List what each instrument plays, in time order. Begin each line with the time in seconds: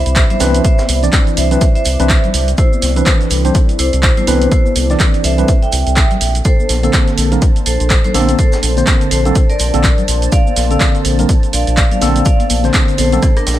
Already playing: analog synth pad C4 E4 D5 B5, vibraphone C5 E5
0.06 analog synth bass C2, closed hi-hat, shaker
0.15 kick, snare, clap, closed hi-hat, shaker
0.30 vibraphone C5 E5, closed hi-hat, high conga, low conga, shaker
0.40 analog synth bass C2, tine electric piano E3 C4 D4 B4, snare, open hi-hat, high conga, shaker
0.54 closed hi-hat, shaker
0.64 vibraphone C5 E5, kick, closed hi-hat, shaker
0.78 snare, high conga, shaker
0.89 analog synth bass C2, open hi-hat, shaker
1.02 tine electric piano E3 C4 D4 D5, closed hi-hat, shaker
1.13 kick, snare, clap, closed hi-hat, shaker
1.27 closed hi-hat, shaker
1.37 analog synth bass C2, vibraphone C5 E5, open hi-hat, shaker
1.51 tine electric piano E3 C4 D4 B4, closed hi-hat, low conga, shaker
1.61 kick, closed hi-hat, shaker
1.75 vibraphone C5 E5, closed hi-hat, shaker
1.85 analog synth bass C2, open hi-hat, shaker
1.86 shaker
1.99 analog synth bass C2, tine electric piano E3 C4 D4 B4, closed hi-hat, shaker
2.09 kick, snare, clap, closed hi-hat, shaker
2.24 closed hi-hat, low conga, shaker
2.34 analog synth bass C2, open hi-hat, shaker
2.48 closed hi-hat, shaker
2.58 vibraphone E4 C5, analog synth pad A4, kick, closed hi-hat, shaker
2.72 high conga, shaker
2.82 analog synth bass C2, snare, open hi-hat, shaker
2.96 tine electric piano E3 C4 D4 B4, vibraphone E4 C5, closed hi-hat, shaker
3.06 kick, snare, clap, closed hi-hat, shaker
3.21 snare, closed hi-hat, shaker
3.30 analog synth bass C2, open hi-hat, shaker
3.44 tine electric piano E3 C4 D4 C5, closed hi-hat, low conga, shaker
3.55 kick, closed hi-hat, shaker
3.69 closed hi-hat, shaker
3.79 analog synth bass C2, vibraphone E4 C5, open hi-hat, shaker
3.93 analog synth bass C2, closed hi-hat, shaker
4.03 kick, snare, clap, closed hi-hat, shaker
4.17 vibraphone E4 C5, closed hi-hat, high conga, low conga, shaker
4.27 analog synth bass C2, tine electric piano E3 C4 D4 B4, snare, open hi-hat, high conga, shaker
4.42 closed hi-hat, shaker
4.51 vibraphone E4 C5, kick, closed hi-hat, shaker
4.65 closed hi-hat, high conga, shaker
4.76 analog synth bass C2, open hi-hat, shaker
4.89 tine electric piano E3 C4 D4 D5, snare, closed hi-hat, shaker
5.00 kick, snare, clap, closed hi-hat, shaker
5.14 closed hi-hat, shaker
5.24 analog synth bass C2, vibraphone C5 E5, open hi-hat, shaker
5.38 tine electric piano E3 C4 D4 B4, closed hi-hat, low conga, shaker
5.48 kick, closed hi-hat, shaker
5.62 vibraphone E5 G5, closed hi-hat, shaker
5.72 analog synth bass C2, open hi-hat, shaker
5.87 analog synth bass C2, closed hi-hat, shaker
5.96 kick, snare, clap, closed hi-hat, shaker
6.11 closed hi-hat, low conga, shaker
6.21 analog synth bass A#1, analog synth pad A#3 D4 C5 A5, open hi-hat, shaker
6.35 closed hi-hat, shaker
6.44 vibraphone A4 C5, kick, closed hi-hat, shaker
6.60 high conga, shaker
6.69 analog synth bass A#1, snare, open hi-hat, shaker
6.83 tine electric piano D3 A#3 C4 A4, vibraphone A4 C5, closed hi-hat, shaker
6.93 kick, snare, clap, closed hi-hat, shaker
7.08 snare, closed hi-hat, shaker
7.18 analog synth bass A#1, open hi-hat, shaker
7.31 tine electric piano D3 A#3 C4 A#4, closed hi-hat, low conga, shaker
7.42 kick, closed hi-hat, shaker
7.56 closed hi-hat, shaker
7.66 analog synth bass A#1, vibraphone A4 C5, open hi-hat, shaker
7.80 analog synth bass A#1, closed hi-hat, shaker
7.90 kick, snare, clap, closed hi-hat, shaker
8.04 vibraphone A4 C5, closed hi-hat, high conga, low conga, shaker
8.14 analog synth bass A#1, tine electric piano D3 A#3 C4 A4, snare, open hi-hat, high conga, shaker
8.28 closed hi-hat, shaker
8.39 vibraphone A4 C5, kick, closed hi-hat, shaker
8.52 snare, high conga, shaker
8.63 analog synth bass A#1, closed hi-hat, open hi-hat, shaker
8.77 tine electric piano D3 A#3 C4 C5, closed hi-hat, shaker
8.87 kick, snare, clap, closed hi-hat, shaker
9.01 closed hi-hat, shaker
9.11 analog synth bass A#1, vibraphone A4 C5, open hi-hat, shaker
9.25 tine electric piano D3 A#3 C4 A4, closed hi-hat, low conga, shaker
9.35 kick, closed hi-hat, shaker
9.50 vibraphone A#4 D5, closed hi-hat, shaker
9.59 analog synth bass A#1, open hi-hat, shaker
9.73 analog synth bass A#1, tine electric piano D3 A#3 C4 A4, closed hi-hat, shaker
9.83 kick, snare, clap, closed hi-hat, shaker
9.98 closed hi-hat, low conga, shaker
10.08 analog synth bass A#1, open hi-hat, shaker
10.22 closed hi-hat, shaker
10.32 vibraphone D5 F5, kick, closed hi-hat, shaker
10.47 high conga, shaker
10.56 analog synth bass A#1, snare, open hi-hat, shaker
10.70 tine electric piano D3 A#3 C4 A4, vibraphone D5 F5, closed hi-hat, shaker
10.80 kick, snare, clap, closed hi-hat, shaker
10.95 snare, closed hi-hat, shaker
11.05 analog synth bass A#1, open hi-hat, shaker
11.18 tine electric piano D3 A#3 C4 A#4, closed hi-hat, low conga, shaker
11.29 kick, closed hi-hat, shaker
11.43 closed hi-hat, shaker
11.53 analog synth bass A#1, vibraphone D5 F5, open hi-hat, shaker
11.67 analog synth bass A#1, closed hi-hat, shaker
11.77 kick, snare, clap, closed hi-hat, shaker
11.91 vibraphone D5 F5, closed hi-hat, high conga, low conga, shaker
12.01 analog synth bass A#1, tine electric piano D3 A#3 C4 A4, snare, open hi-hat, high conga, shaker
12.16 closed hi-hat, shaker
12.25 vibraphone D5 F5, kick, closed hi-hat, shaker
12.40 closed hi-hat, high conga, shaker
12.50 analog synth bass A#1, open hi-hat, shaker
12.64 tine electric piano D3 A#3 C4 C5, snare, closed hi-hat, shaker
12.74 kick, snare, clap, closed hi-hat, shaker
12.88 closed hi-hat, shaker
12.98 analog synth bass A#1, vibraphone A4 C5, open hi-hat, high conga, shaker
13.12 tine electric piano D3 A#3 C4 A4, closed hi-hat, low conga, shaker
13.22 kick, cross-stick, closed hi-hat, shaker
13.37 vibraphone D4 A#4, cross-stick, closed hi-hat, shaker
13.47 analog synth bass A#1, snare, open hi-hat, shaker
13.54 snare, shaker